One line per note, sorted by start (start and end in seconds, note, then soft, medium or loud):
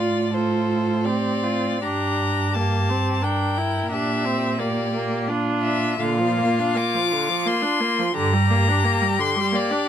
0.00 1.85 A2 soft
0.00 0.33 F4 soft
0.00 0.36 D5 medium
0.34 1.07 F4 soft
0.34 1.07 A4 soft
0.34 1.07 C5 soft
1.05 1.84 C4 soft
1.05 1.45 G4 soft
1.05 1.84 D5 medium
1.44 1.83 F4 soft
1.82 3.92 G2 soft
1.82 2.57 D4 soft
1.82 2.52 G4 soft
1.82 2.55 A#5 medium
2.53 2.91 A#3 soft
2.53 3.21 G4 soft
2.53 3.25 A5 medium
2.89 3.24 C4 soft
3.22 3.59 D4 soft
3.22 3.95 A#4 soft
3.22 3.91 G5 medium
3.58 3.91 E4 soft
3.91 5.96 A#2 soft
3.91 4.26 D4 soft
3.91 4.59 G4 soft
3.91 4.61 E5 medium
4.25 4.60 C4 soft
4.59 4.93 A#3 soft
4.59 5.31 G4 soft
4.59 5.28 D5 medium
4.93 5.30 A#3 soft
5.28 5.98 D4 soft
5.28 6.00 F4 soft
5.63 6.02 E5 medium
5.99 6.65 A#2 soft
5.99 6.20 D3 soft
5.99 8.13 F4 medium
5.99 6.79 F5 medium
6.18 6.39 F3 soft
6.37 6.60 A#3 soft
6.59 6.76 D4 soft
6.75 6.96 A#3 soft
6.75 7.48 D6 medium
6.94 7.14 F3 soft
7.12 7.30 D3 soft
7.29 7.47 F3 soft
7.45 7.64 A#3 soft
7.45 8.16 C6 medium
7.62 7.82 D4 soft
7.80 8.00 A#3 soft
7.99 8.14 F3 soft
8.15 8.75 G2 medium
8.15 8.34 D3 medium
8.15 9.88 G4 medium
8.15 9.22 A#5 medium
8.33 8.51 G3 medium
8.50 8.70 A#3 soft
8.68 8.86 D4 soft
8.84 9.03 A#3 soft
9.02 9.20 G3 soft
9.19 9.37 D3 soft
9.19 9.57 C6 medium
9.36 9.54 G3 soft
9.52 9.72 A#3 medium
9.52 9.88 D5 medium
9.71 9.88 D4 soft